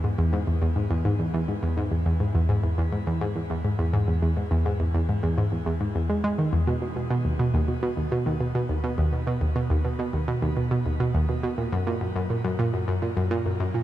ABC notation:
X:1
M:4/4
L:1/16
Q:1/4=104
K:Elyd
V:1 name="Synth arpeggio sound" clef=bass
G,, E,, G,, E,, E,, G,, E,, G,, E,, E,, G,, E,, G,, E,, E,, G,, | E,, G,, E,, E,, G,, E,, G,, E,, E,, G,, E,, G,, E,, E,, G,, E,, | G,, E,, E,, G,, E,, G,, E,, E,, G,, E,, G, G, D, E,, B,, B,, | B,, B,, D,, B,, D,, B,, B,, D,, B,, D,, B,, B,, D,, B,, D,, B,, |
B,, D,, B,, D,, B,, B,, D,, B,, D,, B,, B,, D,, B,, D,, B,, B,, | A,, F,, A,, F,, F,, A,, F,, A,, F,, F,, A,, F,, A,, F,, F,, A,, |]